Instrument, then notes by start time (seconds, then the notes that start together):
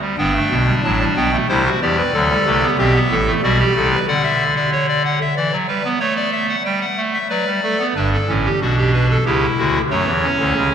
pipe organ
0.01 G3
0.18 G1 G2 B3 D4 G5
0.34 A3
0.51 B1 B2
0.67 G3
0.84 A1 A2 F#3 A5
1.00 G3
1.16 B1 B2 B3 G5
1.33 A3
1.49 C2 C3 G3 E4 C5
1.65 F#4
1.81 E2 E3 G4 D5
1.98 B4
2.14 D2 D3 F#3 A4
2.30 G3
2.46 C2 C3 A3
2.62 B3
2.78 B1 B2 C4 G4 E5
2.95 B3
3.11 A1 A2 A4
3.27 A3
3.43 B1 B2 G3 F#4 D5
3.59 G4
3.75 C2 C3 A4
3.92 B4
4.08 D3 D5 F#5
4.24 E5
4.56 D5
4.72 C#5
4.88 D5
5.05 F#5
5.21 E5
5.36 E3 D5
5.52 F#3
5.68 G3 B4
5.84 B3
6.00 A3 C#5
6.16 D5
6.32 E5
6.49 F#5
6.65 G3 G5
6.81 F#5
6.97 A3
7.14 E5
7.30 F#3 B4 D5
7.46 G3
7.63 A3 A4
7.79 B3
7.96 G1 G2 D4 B4
8.12 A4
8.28 A1 A2 C#4
8.45 G4
8.61 B1 B2 D4 F#4
8.78 G4
8.94 B4
9.10 A4
9.25 C#2 C#3 E4 G4
9.58 D2 D3 F#4
9.90 F#2 F#3 A3 C#5
10.07 E2 E3
10.23 C#4
10.39 D2 D3
10.56 C#2 C#3